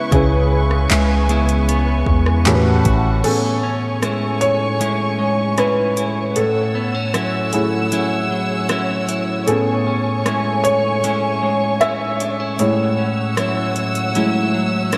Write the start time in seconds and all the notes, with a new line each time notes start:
Already playing: C#3 G#3 B3 E4 B4 C#6
0.11 C#2 C#3 C#4 E4 G#4 B4 G#5, kick, closed hi-hat
0.71 cross-stick
0.90 C#2 G#3 E5, clap, closed hi-hat
1.29 G#3 B3 E4, closed hi-hat
1.49 closed hi-hat
1.68 B3, closed hi-hat
2.06 E2, kick
2.26 cross-stick
2.46 A2 E3 C#4 F#4 G4 A#4 B4 F#5 A5, clap, closed hi-hat
2.54 B4
2.85 A1 F#4, kick, closed hi-hat
3.24 A2 B3 C#4 G#4 A4 C#5 G#5 C#6, closed hi-hat, crash
3.63 C#4
4.02 G#3 C#4 E4, cross-stick, closed hi-hat
4.41 C#5, closed hi-hat
4.80 G#3 C#4 E4, closed hi-hat
5.19 G#3
5.58 G#3 C#4 E4 B4, cross-stick, closed hi-hat
5.97 E4, closed hi-hat
6.36 A2 A4 F#5 E6, closed hi-hat
6.75 B3
6.95 C#4
7.14 F#3 C#4 E4, cross-stick, closed hi-hat
7.53 A3 E4 G#4, closed hi-hat
7.92 F#3 C#4 E4, closed hi-hat
8.31 F#3
8.69 F#3 C#4 E4, cross-stick, closed hi-hat
9.09 E4, closed hi-hat
9.47 A2 B3 C#4 G#4 A4 G#5 C#6, closed hi-hat
9.87 C#4
10.26 G#3 C#4 E4, cross-stick, closed hi-hat
10.64 C#5, closed hi-hat
11.04 G#3 C#4 E4, closed hi-hat
11.42 G#3
11.81 G#3 C#4 E4 E5, cross-stick, closed hi-hat
12.20 D4, closed hi-hat
12.40 E4
12.59 A2 G#3 A3 E4 C#5 F#5 E6, closed hi-hat
12.98 C#4
13.37 F#3 C#4 E4, cross-stick, closed hi-hat
13.76 closed hi-hat
13.95 closed hi-hat
14.15 F#3 G#3 A3 C#4 E4, closed hi-hat
14.54 F#3
14.92 F#3 C#4 E4, cross-stick, closed hi-hat